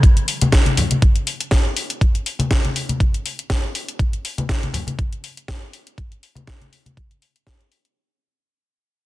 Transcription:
0.03 kick, closed hi-hat
0.17 closed hi-hat
0.28 open hi-hat
0.41 closed hi-hat, high conga
0.52 kick, snare, closed hi-hat
0.66 closed hi-hat, high conga
0.77 open hi-hat, low conga
0.91 closed hi-hat, high conga
1.02 kick, closed hi-hat
1.16 closed hi-hat
1.27 open hi-hat
1.41 closed hi-hat
1.51 kick, snare, closed hi-hat
1.77 open hi-hat
1.90 closed hi-hat
2.01 kick, closed hi-hat
2.15 closed hi-hat
2.26 open hi-hat
2.39 closed hi-hat, high conga
2.51 kick, snare, closed hi-hat
2.65 closed hi-hat, high conga
2.76 open hi-hat
2.89 closed hi-hat, high conga
3.00 kick, closed hi-hat
3.14 closed hi-hat
3.26 open hi-hat
3.39 closed hi-hat
3.50 kick, snare, closed hi-hat
3.75 open hi-hat
3.88 closed hi-hat
3.99 kick, closed hi-hat
4.13 closed hi-hat
4.25 open hi-hat
4.38 closed hi-hat, high conga
4.49 kick, snare, closed hi-hat
4.63 closed hi-hat, high conga
4.74 open hi-hat, low conga
4.87 closed hi-hat, high conga
4.99 kick, closed hi-hat
5.13 closed hi-hat
5.24 open hi-hat
5.37 closed hi-hat
5.48 kick, snare, closed hi-hat
5.73 open hi-hat
5.87 closed hi-hat
5.98 kick, closed hi-hat
6.12 closed hi-hat
6.23 open hi-hat
6.35 closed hi-hat, high conga
6.47 kick, snare, closed hi-hat
6.61 closed hi-hat, high conga
6.73 open hi-hat
6.86 closed hi-hat, high conga
6.97 kick, closed hi-hat
7.11 closed hi-hat
7.22 open hi-hat
7.36 closed hi-hat
7.47 kick, snare, closed hi-hat
7.61 closed hi-hat
7.72 open hi-hat
7.85 closed hi-hat

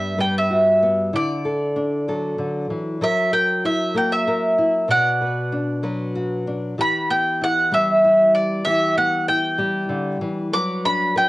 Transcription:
Already playing: G2 G3 B3 B4 E5
0.18 G3 B4 G5
0.38 E5
0.50 F#4
0.83 B3
1.13 D3 E4 D5
1.45 A4
1.76 D4
2.08 F#3 A4
2.38 D3
2.70 E3
3.01 F#3 A#4 E5
3.32 A#4 G5
3.65 E4 E5
3.94 A#3 A#4 G5
4.12 E5
4.27 A#4
4.58 E4
4.88 B2 F#4 D5 F#5
5.21 B4
5.52 D4
5.83 F#3 B4
6.16 F#4
6.47 D4
6.78 E3 G4 B5
7.10 B3 G5
7.41 E4 F#5
7.71 G3 G4 E5
8.04 E4
8.35 D5
8.65 E3 G4 E5
8.97 B3 F#5
9.28 E4 G5
9.58 G3 G4
9.89 D3
10.21 E3
10.53 F#3 B4 D6
10.85 D4 B5
11.16 B4 G5

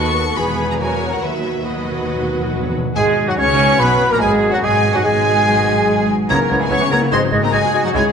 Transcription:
Already playing: D#2 D#3 F#3 B3 F#4 A4 B4 C#6
0.17 A4
0.37 E1 E2 E3 B3 G#4 B4 B5
0.58 G#4 B4
0.70 A#5
0.79 E3 F#3 F#4 A#4 C#5 G#5
1.01 F#4 A#4
1.14 F#5
1.22 D#2 B2 D#3 F#3 F#4 B4 E5
1.32 B2
1.39 B2
1.44 B2 B3
1.54 B2
1.62 B2 F#3 F#4 B4 D#5
1.70 B2
1.77 B2
1.85 B2 F#4
1.92 B2
1.99 B2
2.07 B2 D#3
2.16 B2
2.23 B2
2.31 B2 B3
2.39 B2
2.46 B2
2.53 B2 B4
2.61 B2
2.70 B2
2.75 B2 F#4
2.84 B2
2.95 G#1 G#2 B2 G#3 G#4 G#5
3.17 D#4
3.27 F#2 F#3 F#4 F#5
3.37 C#2 C#3 C#4 B4 C#5 C#6
3.59 F#4
3.79 B1 F#2 B2 B3 B4 B5
4.01 E4
4.10 A#2 A#3 A#4 A#5
4.20 G#1 G#2 G#3 G#4 A#4 G#5
4.42 F#4
4.50 F#2 F#3 F#4 F#5
4.61 G#1 G#2 B2 G#3 G#4 G#5
4.84 D#4
4.92 F#2 F#3 F#4 F#5
5.03 G#1 G#2 G#3 G#4 B4 G#5
5.26 F#4
5.47 F#3
5.67 D#4
5.88 B4
6.10 F#4
6.29 C#2 C#3 A#3 B3 E4 A#4 C#5 A#5 G#6
6.49 C#2 C#3 G#3 B3 C#4 E4 C#5 G#6
6.60 C#3 E3 G#3 B3 G#4 G#5
6.69 C#2 C#3 B3 C#4 E4 C#5 C#6 G#6
6.80 C#3 E3 B3
6.90 C#2 C#3 G#3 A#3 B3 C#4 E4 A#4 C#5 A#5 G#6
7.01 C#3 B3 E4
7.11 G#1 G#2 D#3 G#3 C4 F#4 C5 D#5 C6 G#6
7.22 G#2 F#3 D#4
7.31 G#1 G#2 G#3 D#4 F#4 D#5 G#6
7.41 G#2 D#3 A#3 C4 A#4 A#5
7.51 G#1 G#2 F#3 G#3 D#4 F#4 G#4 D#5 G#5 G#6
7.63 G#2 G#3 F#4
7.72 G#3 F#4 D#5 G#6
7.83 G#2 F#3 D#4 F#4 F#5
7.93 C#2 C#3 G#3 E4 G#4 C#5 G#5 G#6

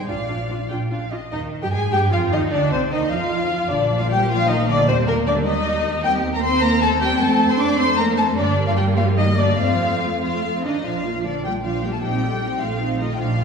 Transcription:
0.08 A#1 F3 D4 F4 D5 F5
0.29 D4 F4
0.50 D4 F4
0.69 A#1 D4 F4 G5
0.90 D4 F4 F5
1.12 D4 F4 D#5
1.31 D#2 D#3 D#4 D#5
1.63 G2 G3 G4 G5
1.73 G#2 G#3 G#4 G#5
1.92 G2 G3 G4 G5
2.11 F2 F3 F4 F5
2.32 D#2 D#3 D#4 D#5
2.51 D2 D3 D4 D5
2.71 C2 C3 C4 C5
2.91 D#2 D#3 D#4 D#5
3.11 F2 F3 F4 F5
3.70 A#1 D3 F3 A#3 D4 D5
4.00 F3 F4 F5
4.09 G3 G4 G5
4.29 F3 F4 F5
4.49 D#3 D#4 D#5
4.68 D3 D4 D5
4.88 D#2 C3 G3 C4 C5
5.08 A#2 A#3 A#4
5.27 D3 D4 D5
5.46 D#3 D#4 D#5
6.04 G3 A#3 C4 G4 G5
6.34 A#3 A#4 A#5
6.43 C4 C5 C6
6.62 A#3 A#4 A#5
6.81 A3 A4 A5
7.00 G3 G4 G5
7.20 F2 A3 A4 A5
7.49 C4 C5 C6
7.59 D4 D5 D6
7.78 C4 C5 C6
7.97 A#3 A#4 A#5
8.17 A3 A4 A5
8.37 G2 D3 G3 A#3 D4 D5
8.67 F3 F4 F5
8.77 G3 G4 G5
8.96 F3 F4 F5
9.17 D#3 D#4 D#5
9.38 D3 D4 D5
9.59 F2 F3 A3 C4 F4 F5
10.22 F3 A3 F4 F5
10.55 C4
10.64 D#3 D4 D#4 D#5
10.85 A#1 F3 D4 F4 F5
11.05 A#3 F4
11.25 D3 F3 D4 D5
11.44 A#1 G3 A#3 F4 G4 G5
11.64 F3 D4 F4 F5
11.83 G3 A#3 F4 G4 G5
11.93 A3 A4 A5
12.02 A#1 G3 C4 D#4 G4 G5
12.23 A3 F4
12.42 C4 D#4
12.61 A#1 F3 A3 F4 F5
12.81 C4 D#4
13.00 D#3 A3 D#4 F4 D#5
13.13 G5
13.20 A#1 F3 D4 F4 F5
13.40 A#3 F4

